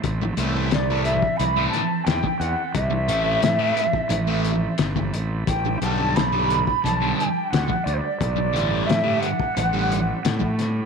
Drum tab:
HH |x-x-x-x-x-x-x-x-|x-x-x-x-x-x-x-x-|x-x-x-x-x-x-x-x-|x-x-x-x-x-x-x-x-|
SD |----o-----o-o---|----o-------o---|----o-------o---|----o-------o-o-|
BD |o------o-----o--|o------o-----o--|o------o-----o--|o------o-----o--|